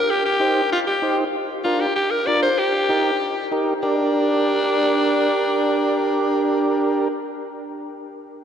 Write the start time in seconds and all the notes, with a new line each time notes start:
Already playing: A#4
0.10 G4
0.26 G4
0.40 D#4 G4 C5
0.72 F4
0.87 G4
1.02 D#4 G4 C5
1.64 D4 F4 A#4
1.81 G4
1.96 G4
2.11 A#4
2.27 D4 F4 A#4 D5
2.42 C5
2.59 G4
2.89 D#4 G4 A#4
3.51 D#4 G4 A#4
3.82 D4 G4 A#4